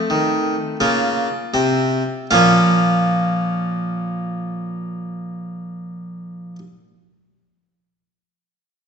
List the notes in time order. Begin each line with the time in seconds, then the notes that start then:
Already playing: A3 C4 A5
0.10 D#3
0.80 C#3 A#3 F4
1.54 C3 C4
2.31 A#2 F3 A#3 C#4 F4 F5